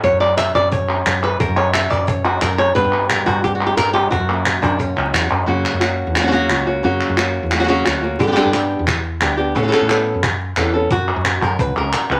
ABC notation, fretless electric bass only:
X:1
M:4/4
L:1/16
Q:1/4=177
K:none
V:1 name="Fretless electric bass" clef=bass
^F,, F,,4- F,, F,,6 F,,4 | ^F,, F,,4- F,, F,,6 F,,4 | G,, G,,4- G,, G,,6 G,,4 | ^F,, F,,4- F,, F,,4 ^C,,2 E,,2 F,,2 |
^F,,2 z F,,4 E,,4- E,, ^C,,4 | ^F,,2 z F,,4 E,,4- E,, D,,4 | G,,2 z G,,4 E,,4- E,, D,,4 | A,,2 z A,,4 ^F,,4- F,, E,,4 |
^F,,3 F,,3 F,,2 ^C,,2 C,,2 z2 C,,2 |]